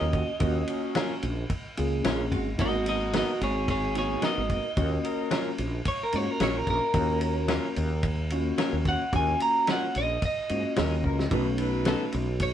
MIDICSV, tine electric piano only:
0, 0, Header, 1, 2, 480
1, 0, Start_track
1, 0, Key_signature, -6, "minor"
1, 0, Tempo, 545455
1, 362, Time_signature, 4, 2, 24, 8
1, 11030, End_track
2, 0, Start_track
2, 0, Title_t, "Tine electric piano"
2, 0, Program_c, 0, 4
2, 0, Note_on_c, 0, 58, 75
2, 0, Note_on_c, 0, 61, 64
2, 0, Note_on_c, 0, 65, 65
2, 0, Note_on_c, 0, 66, 81
2, 256, Note_off_c, 0, 58, 0
2, 257, Note_off_c, 0, 66, 0
2, 258, Note_off_c, 0, 61, 0
2, 259, Note_off_c, 0, 65, 0
2, 349, Note_on_c, 0, 58, 72
2, 350, Note_on_c, 0, 66, 77
2, 351, Note_on_c, 0, 65, 64
2, 353, Note_on_c, 0, 61, 65
2, 1177, Note_off_c, 0, 58, 0
2, 1178, Note_off_c, 0, 65, 0
2, 1178, Note_off_c, 0, 66, 0
2, 1179, Note_off_c, 0, 61, 0
2, 1562, Note_on_c, 0, 61, 76
2, 1563, Note_on_c, 0, 58, 83
2, 1565, Note_on_c, 0, 65, 75
2, 1568, Note_on_c, 0, 68, 91
2, 2182, Note_off_c, 0, 58, 0
2, 2182, Note_off_c, 0, 61, 0
2, 2183, Note_off_c, 0, 65, 0
2, 2184, Note_off_c, 0, 68, 0
2, 2269, Note_on_c, 0, 66, 82
2, 2270, Note_on_c, 0, 63, 64
2, 2271, Note_on_c, 0, 58, 65
2, 2276, Note_on_c, 0, 59, 62
2, 3098, Note_off_c, 0, 63, 0
2, 3098, Note_off_c, 0, 66, 0
2, 3099, Note_off_c, 0, 58, 0
2, 3101, Note_off_c, 0, 59, 0
2, 3477, Note_on_c, 0, 58, 67
2, 3477, Note_on_c, 0, 59, 67
2, 3480, Note_on_c, 0, 66, 82
2, 3481, Note_on_c, 0, 63, 63
2, 4099, Note_off_c, 0, 58, 0
2, 4099, Note_off_c, 0, 59, 0
2, 4101, Note_off_c, 0, 63, 0
2, 4101, Note_off_c, 0, 66, 0
2, 4200, Note_on_c, 0, 61, 68
2, 4204, Note_on_c, 0, 66, 80
2, 4207, Note_on_c, 0, 58, 72
2, 4209, Note_on_c, 0, 65, 60
2, 5023, Note_off_c, 0, 61, 0
2, 5025, Note_off_c, 0, 66, 0
2, 5026, Note_off_c, 0, 58, 0
2, 5027, Note_off_c, 0, 65, 0
2, 5397, Note_on_c, 0, 58, 66
2, 5399, Note_on_c, 0, 61, 63
2, 5400, Note_on_c, 0, 65, 63
2, 5400, Note_on_c, 0, 66, 78
2, 6019, Note_off_c, 0, 58, 0
2, 6020, Note_off_c, 0, 61, 0
2, 6020, Note_off_c, 0, 65, 0
2, 6020, Note_off_c, 0, 66, 0
2, 6115, Note_on_c, 0, 65, 68
2, 6116, Note_on_c, 0, 58, 75
2, 6116, Note_on_c, 0, 61, 73
2, 6120, Note_on_c, 0, 66, 81
2, 6939, Note_off_c, 0, 65, 0
2, 6940, Note_off_c, 0, 58, 0
2, 6940, Note_off_c, 0, 61, 0
2, 6942, Note_off_c, 0, 66, 0
2, 7322, Note_on_c, 0, 58, 82
2, 7322, Note_on_c, 0, 61, 85
2, 7323, Note_on_c, 0, 65, 77
2, 7323, Note_on_c, 0, 66, 92
2, 7940, Note_off_c, 0, 58, 0
2, 7941, Note_off_c, 0, 61, 0
2, 7941, Note_off_c, 0, 65, 0
2, 7941, Note_off_c, 0, 66, 0
2, 8042, Note_on_c, 0, 61, 62
2, 8043, Note_on_c, 0, 58, 74
2, 8043, Note_on_c, 0, 65, 65
2, 8043, Note_on_c, 0, 66, 82
2, 8863, Note_off_c, 0, 58, 0
2, 8863, Note_off_c, 0, 61, 0
2, 8863, Note_off_c, 0, 65, 0
2, 8863, Note_off_c, 0, 66, 0
2, 9240, Note_on_c, 0, 58, 64
2, 9241, Note_on_c, 0, 61, 68
2, 9241, Note_on_c, 0, 65, 64
2, 9241, Note_on_c, 0, 66, 76
2, 9859, Note_off_c, 0, 58, 0
2, 9859, Note_off_c, 0, 61, 0
2, 9859, Note_off_c, 0, 65, 0
2, 9860, Note_off_c, 0, 66, 0
2, 9952, Note_on_c, 0, 61, 78
2, 9953, Note_on_c, 0, 57, 84
2, 9953, Note_on_c, 0, 66, 92
2, 9957, Note_on_c, 0, 63, 74
2, 10776, Note_off_c, 0, 61, 0
2, 10777, Note_off_c, 0, 57, 0
2, 10777, Note_off_c, 0, 66, 0
2, 10779, Note_off_c, 0, 63, 0
2, 11030, End_track
0, 0, End_of_file